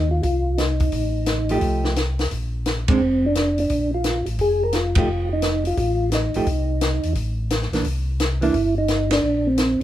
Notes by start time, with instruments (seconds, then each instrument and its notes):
Already playing: tonewheel organ D#2
0.11 tonewheel organ F4
0.23 tonewheel organ C2 F4, kick, open hi-hat
0.58 tonewheel organ D#4, snare, closed hi-hat
0.80 kick, open hi-hat
0.92 tonewheel organ A1, kick, open hi-hat
1.26 snare, closed hi-hat
1.49 hollow-body jazz guitar F3 A3 D#4 G4, open hi-hat
1.61 tonewheel organ C2, kick, open hi-hat
1.84 snare
1.96 snare, closed hi-hat
2.19 snare, open hi-hat
2.31 tonewheel organ A#1, kick, open hi-hat
2.66 snare, closed hi-hat
2.88 hollow-body jazz guitar G#3 C4 D4, tonewheel organ C4, kick, ride
3.00 tonewheel organ F1
3.26 tonewheel organ D4
3.35 snare, closed hi-hat
3.58 tonewheel organ D4, open hi-hat
3.70 tonewheel organ A#1, kick, open hi-hat
3.94 tonewheel organ F4
4.04 snare, closed hi-hat
4.26 tonewheel organ A1, open hi-hat
4.38 tonewheel organ F1 G#4, kick, open hi-hat
4.63 tonewheel organ A#4
4.72 tonewheel organ F4, snare, closed hi-hat
4.95 hollow-body jazz guitar F3 A3 D#4 G4, tonewheel organ F4, kick, ride
5.08 tonewheel organ F1
5.33 tonewheel organ D#4
5.42 snare, closed hi-hat
5.65 tonewheel organ F4, open hi-hat
5.77 tonewheel organ A1 F4, kick, open hi-hat
6.12 tonewheel organ D#4, snare, closed hi-hat
6.34 tonewheel organ A1, hollow-body jazz guitar F3 A3 D#4 G4, open hi-hat
6.46 tonewheel organ C2, kick, open hi-hat
6.81 snare, closed hi-hat
7.03 tonewheel organ E2, open hi-hat
7.15 tonewheel organ A1, kick, open hi-hat
7.50 snare, closed hi-hat
7.62 snare
7.72 tonewheel organ A#1, hollow-body jazz guitar E3 A#3 D4, snare, open hi-hat
7.84 tonewheel organ C2, kick, open hi-hat
8.20 snare, closed hi-hat
8.41 hollow-body jazz guitar E3 A#3 D4, tonewheel organ E4, open hi-hat
8.54 tonewheel organ G1, kick, open hi-hat
8.78 tonewheel organ D#4
8.88 snare, closed hi-hat
9.11 tonewheel organ D4, snare, ride
9.23 tonewheel organ A#1
9.47 tonewheel organ C4
9.58 snare, closed hi-hat